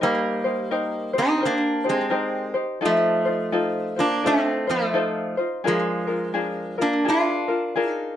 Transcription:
0.01 G3 A#3 D#4 G4 A#4 C5
0.44 D#4 G4 C5
0.71 D#4 G4 A#4 C5
1.13 D#4 G4 C5
1.18 C4 D#4
1.41 G4 A#4 C5
1.45 A#3 D4
1.84 D#4 G4 C5
1.89 G#3 C4
2.10 D#4 G4 A#4 C5
2.54 D#4 G4 C5
2.81 D#4 F4 A4 C5
2.85 F3 A3
3.25 D#4 F4 C5
3.52 D#4 F4 A4 C5
3.96 A#3 D4 F4 C5
4.23 A3 D#4 F4 A4 C5
4.27 C4
4.67 F3 A3 D#4 F4 C5
4.94 D#4 F4 A4 C5
5.37 D#4 F4 C5
5.64 F3 G#3 D4 F4 G#4 A#4
6.07 D4 F4 A#4
6.34 D4 F4 G#4 A#4
6.78 A#3 D4 F4 A#4
7.05 D4 F4 G#4 A#4
7.09 F4
7.48 D4 F4 A#4
7.76 D4 F4 G#4 A#4
7.89 D#4

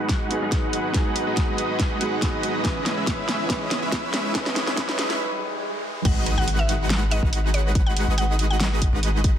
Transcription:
Already playing: G#1 F#3 G#3 B3 D#4 F#4 G#4 B4 F#5 G#5 D#6, riser
0.09 kick, snare, closed hi-hat
0.29 F#3 B3 D#4 G#4, closed hi-hat
0.42 G#1 G#3 D#4 F#4 B4 F#5
0.52 kick, snare, closed hi-hat
0.73 closed hi-hat
0.92 F#3 B3 D#4 G#4, kick, snare, closed hi-hat
1.16 closed hi-hat
1.27 G#1 G#3 D#4 F#4 B4 D#5
1.37 kick, snare, closed hi-hat
1.58 closed hi-hat
1.80 kick, snare, closed hi-hat
1.99 G#1 F#3 G#3 B3 D#4 F#4 B4 F#5, closed hi-hat
2.03 G#4
2.22 G#3 D#4 F#4 B4 D#5, kick, snare, closed hi-hat
2.43 closed hi-hat
2.63 C#2 E3 G#3 C#4 E4 B4 D#5 C#6, kick, snare, closed hi-hat
2.86 snare, closed hi-hat
2.97 C#2 G#3 C#4 E4 B4 E5
3.07 kick, snare, closed hi-hat
3.29 snare, closed hi-hat
3.48 E3 C#4 B4, kick, snare, closed hi-hat
3.71 snare, closed hi-hat
3.82 C#2 G#3 C#4 E4 B4 E5
3.92 kick, snare, closed hi-hat
4.14 snare, closed hi-hat
4.33 E3 G#3 C#4 D#4 E4 B4 D#5, kick, snare, closed hi-hat
4.46 snare
4.56 snare, closed hi-hat
4.67 C#2 G#3 C#4 E4 B4 E5, snare
4.75 E3 G#3 C#4 D#4 E4 B4 D#5, kick, snare, closed hi-hat
4.79 B4
4.89 snare
4.99 snare, closed hi-hat
5.10 C#2 G#3 C#4 E4 B4 E5, snare
5.20 swell
6.05 G#1 G#3 D#4 F#4 B4 D#5 F#5, kick, closed hi-hat, crash, impact
6.26 closed hi-hat
6.38 G#1 G#3 D#4 F#4 B4 F#5
6.48 closed hi-hat
6.59 E5
6.69 closed hi-hat
6.90 snare, closed hi-hat
7.11 D#5, closed hi-hat
7.23 G#1 G#3 D#4 F#4 B4 F#5, kick
7.33 closed hi-hat
7.54 C#5, closed hi-hat
7.75 kick, closed hi-hat
7.86 F#5
7.97 closed hi-hat
8.08 G#1 G#3 D#4 F#4 B4 D#5
8.18 F#5, closed hi-hat
8.39 closed hi-hat
8.50 F#5
8.60 snare, closed hi-hat
8.82 kick, closed hi-hat
8.93 G#1 G#3 D#4 F#4 B4 D#5
9.03 closed hi-hat
9.24 kick, closed hi-hat

